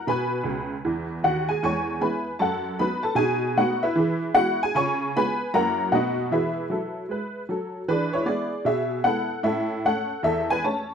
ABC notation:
X:1
M:4/4
L:1/8
Q:"Swing" 1/4=154
K:E
V:1 name="Honky-tonk piano"
[Bgb]6 [Ff] [Gg] | [cgc']2 [Bgb]2 [Afa]2 [Bb] [Aa] | [Gg]2 [Ff] [EBe]3 [Ff] [Gg] | [cgc']2 [Bgb]2 [^Af^a]2 [Fdf]2 |
[EBe]6 z2 | [=DB] [Ec] [G=d]2 [Ge]2 [Af]2 | [Ae]2 [Af]2 [Ae] [Bg] [ca]2 |]
V:2 name="Honky-tonk piano"
B,,2 [C,,C,]2 [E,,E,]2 [D,,D,]2 | [E,,G,]2 [G,B,E]2 F,,2 [F,B,D]2 | [B,,D]2 [A,B,D]2 [E,G]2 [G,B,E]2 | [C,^E]2 [G,B,E]2 [F,,F,^A,C=E]2 [B,,=A,B,D]2 |
[E,G]2 [F,A]2 [G,B]2 [F,A]2 | [E,G]2 [G,B,E]2 B,,2 [G,B,E]2 | [A,,C]2 [A,C]2 E,,2 [A,C]2 |]